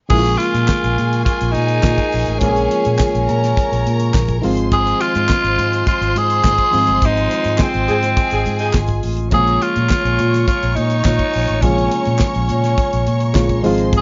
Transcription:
0.09 A#1 C#3 F3 G#3 A#3 E4 F4 G#4 A#4 G#5 C#6, kick, crash
0.19 F4
0.25 closed hi-hat
0.38 F4, closed hi-hat
0.54 A#2, closed hi-hat
0.68 kick, snare, clap
0.84 A#1, closed hi-hat
0.98 A#2, closed hi-hat
1.13 closed hi-hat
1.25 F4, kick, closed hi-hat
1.41 A#1, closed hi-hat
1.52 D#4, closed hi-hat
1.56 A#2
1.68 closed hi-hat
1.83 A#2, kick, snare, clap
1.98 kick, closed hi-hat
2.12 A#1, open hi-hat
2.26 A1, closed hi-hat
2.33 D#4
2.39 A#1 C#3 F3 G#3 A#3 C#4 F4, kick, closed hi-hat
2.49 G#4
2.56 closed hi-hat
2.71 closed hi-hat
2.85 A#2, closed hi-hat
2.97 C#4, kick, snare, clap
3.15 A#1, closed hi-hat
3.27 A#2 A#4 A#5, closed hi-hat
3.44 snare, closed hi-hat
3.57 kick, closed hi-hat
3.72 A#1, closed hi-hat
3.87 A#2, closed hi-hat
4.00 closed hi-hat
4.14 A#1, kick, snare, clap
4.28 kick, closed hi-hat
4.42 G#1 D#3 F3 G#3 C4 F4 C5 D#5 C6, open hi-hat
4.57 closed hi-hat
4.72 G#4, kick, closed hi-hat
4.87 closed hi-hat
5.01 F4, closed hi-hat
5.15 G#2, closed hi-hat
5.29 kick, snare, clap
5.44 G#1, closed hi-hat
5.58 G#2, closed hi-hat
5.73 closed hi-hat
5.87 F4, kick, closed hi-hat
6.01 G#1, closed hi-hat
6.16 G#2 G#4, closed hi-hat
6.30 closed hi-hat
6.44 G#2, kick, snare, clap
6.58 kick, closed hi-hat
6.71 G#2 D#3 F3 G#3 C4 F4, open hi-hat
6.87 G1, closed hi-hat
7.02 G#1 D#4, kick, closed hi-hat
7.17 closed hi-hat
7.31 closed hi-hat
7.44 G#2, closed hi-hat
7.58 F3 G#3 C4 D#4 G#4, kick, snare, clap
7.74 G#1, closed hi-hat
7.88 G#2 F3 G#3 D#4 G#4, closed hi-hat
8.03 snare, closed hi-hat
8.17 G#4 G#5, kick, closed hi-hat
8.31 G#1 F3 G#3 D#4 G#4, closed hi-hat
8.46 G#2, closed hi-hat
8.59 F3 G#3 D#4 G#4, closed hi-hat
8.74 G#1, kick, snare, clap
8.88 kick, closed hi-hat
9.03 A1, open hi-hat
9.17 closed hi-hat
9.30 A#1 C3 F3 G#3 A#3 F4 G#4 C#5 G#5 A#5 C#6, kick, closed hi-hat
9.38 C#3
9.47 closed hi-hat
9.62 F4, closed hi-hat
9.76 A#2, closed hi-hat
9.90 kick, snare, clap
10.05 A#1, closed hi-hat
10.19 A#2, closed hi-hat
10.34 snare, closed hi-hat
10.47 F4, kick, closed hi-hat
10.63 A#1, closed hi-hat
10.75 A#2 D#4, closed hi-hat
10.90 closed hi-hat
11.05 A#2, kick, snare, clap
11.19 kick, closed hi-hat
11.33 A#1, open hi-hat
11.47 A1, closed hi-hat
11.61 A#1 C3 F3 G#3 A#3 C#4 F4 A#5, kick, closed hi-hat
11.68 C#3
11.78 closed hi-hat
11.91 closed hi-hat
12.05 A#2, closed hi-hat
12.19 C#4, kick, snare, clap
12.35 A#1, closed hi-hat
12.49 A#2, closed hi-hat
12.64 snare, closed hi-hat
12.78 kick, closed hi-hat
12.93 A#1, closed hi-hat
13.07 A#2, closed hi-hat
13.20 closed hi-hat
13.34 A#1 C#3 F3 G#3 A#3 F4, kick, snare, clap
13.49 kick, closed hi-hat
13.62 G#1 D#3 F3 G#3 C4 F4 C5 D#5 C6, open hi-hat
13.78 closed hi-hat
13.93 kick, closed hi-hat
13.97 G#4

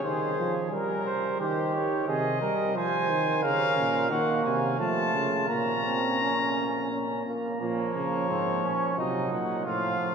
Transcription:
0.03 D#3 G#4 C5
0.38 F3
0.71 G3 A#4
1.06 C5
1.40 D#3 G4 C5
1.75 C#5
2.08 C3 G#4 D#5
2.41 G3 A#4
2.76 F3 C5 G#5
3.10 D#3
3.43 C#3 C#4 A#4 F5
3.77 A#2
4.10 D#3 A#3 F#4 F#5
4.45 C3 G#5
4.80 F3 A3 F4 A5
5.15 C#3
5.49 A#2 A#3 C#4 A#5
5.86 C4
6.22 C#4
6.92 C#4
7.26 A#3
7.61 A#2 F3 A#3 C#5
7.95 C#3
8.29 G#2 C4
8.63 A#2 C#4
8.98 C3 F#3 D#4 D#5
9.32 A#2 F#5
9.65 A2 F3 F4 F5
10.00 A2

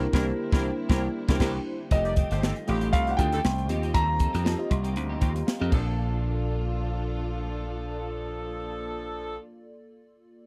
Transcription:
Already playing: D3 G3 A#3 C4 D4 E4 G4 A#4 C5
0.13 C2 E3 A#3 D4 E4 G4 A#4 C5, kick, snare
0.52 C2 E3 A#3 D4 E4 G4 A#4 C5, kick, snare
0.89 C2 E3 A#3 D4 E4 G4 A#4 C5, kick, snare
1.28 C2 E3 A#3 D4 E4 G4 A#4 C5, kick, snare
1.40 C2 E3 A#3 D4 E4 G4 A#4 C5, kick, snare, crash
1.91 F1 D#3 G3 A3 C4 F4 G4 D#5, kick, closed hi-hat
2.05 G4 A#4 D5, muted clean electric guitar stroke, closed hi-hat
2.16 D#3 A3 C4 G4, kick, closed hi-hat
2.30 G1 D#3 A3 C4 G4 A4 C5, snare, closed hi-hat
2.42 D#3 A3 C4 D#4 G4 A4, snare
2.56 muted clean electric guitar stroke, closed hi-hat
2.67 A1 A3 C4 D#4 F4 G4 D#5, muted clean electric guitar stroke, closed hi-hat
2.81 D#3 A3 C4 G4, closed hi-hat
2.93 C2 C4 D#4 A4 F5, kick, closed hi-hat
3.07 C4 D#4 G4, muted clean electric guitar stroke, closed hi-hat
3.11 F#5
3.17 D2 D#3 A3 C4 F4 G4 D#5 G5, kick, closed hi-hat
3.32 D#3 A3 C4 D#4 G4 A4, closed hi-hat
3.44 C2, muted clean electric guitar stroke, snare
3.58 muted clean electric guitar stroke, closed hi-hat
3.68 D#2 F3 G3 A#3 C4 D#4 F4 G4 D#5, closed hi-hat
3.82 F3 C4 D#4 G4, closed hi-hat
3.94 D#2 F3 C4 D#4 A4 A#5, kick, closed hi-hat
4.08 muted clean electric guitar stroke
4.19 F3 C4 D#4 A4, kick, closed hi-hat
4.33 F2 F3 C4 D#4 G4, closed hi-hat
4.44 F3 C4 D#4 F4 G4 A4 D#5, snare
4.58 C4 F4 G4 D#5, muted clean electric guitar stroke
4.69 C2 C6, muted clean electric guitar stroke, kick, closed hi-hat
4.84 F3 C4 D#4 G4, closed hi-hat
4.95 D2 A#5, muted clean electric guitar stroke, closed hi-hat
5.09 F3 C4 D#4 G4
5.20 D#2 F3 C4 D#4 G4 G5, kick, closed hi-hat
5.34 muted clean electric guitar stroke, closed hi-hat
5.46 F5, muted clean electric guitar stroke, snare
5.59 F2 F3 C4 D#4 F4 G4 D#5
5.69 A#1 A#2 F3 A#3 D4 F4 A4, kick, crash
5.73 D4 A4 D5

